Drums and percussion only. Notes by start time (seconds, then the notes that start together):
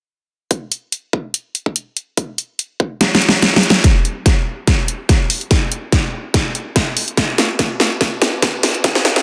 0.51 kick, closed hi-hat
0.72 closed hi-hat
0.92 closed hi-hat
1.13 kick
1.34 closed hi-hat
1.55 closed hi-hat
1.66 kick
1.76 closed hi-hat
1.97 closed hi-hat
2.17 kick, closed hi-hat
2.38 closed hi-hat
2.59 closed hi-hat
2.80 kick
3.01 snare, closed hi-hat
3.15 snare
3.22 closed hi-hat
3.29 snare
3.33 kick
3.42 snare, closed hi-hat
3.54 kick, snare
3.63 closed hi-hat
3.70 snare
3.75 closed hi-hat
3.84 kick, snare, closed hi-hat
4.05 closed hi-hat
4.26 kick, snare, closed hi-hat
4.67 kick, snare, closed hi-hat
4.88 closed hi-hat
5.09 kick, snare, closed hi-hat
5.30 open hi-hat
5.41 closed hi-hat
5.51 kick, snare, closed hi-hat
5.72 closed hi-hat
5.92 kick, snare, closed hi-hat
6.34 kick, snare, closed hi-hat
6.55 closed hi-hat
6.76 kick, snare, closed hi-hat
6.97 open hi-hat
7.08 closed hi-hat
7.17 kick, snare, closed hi-hat
7.38 snare, closed hi-hat
7.59 kick, snare, closed hi-hat
7.80 snare
8.01 kick, snare, closed hi-hat
8.22 snare, closed hi-hat
8.42 kick, snare, closed hi-hat
8.63 snare, open hi-hat
8.75 closed hi-hat
8.84 kick, snare, closed hi-hat
8.95 snare
9.05 snare, closed hi-hat
9.16 snare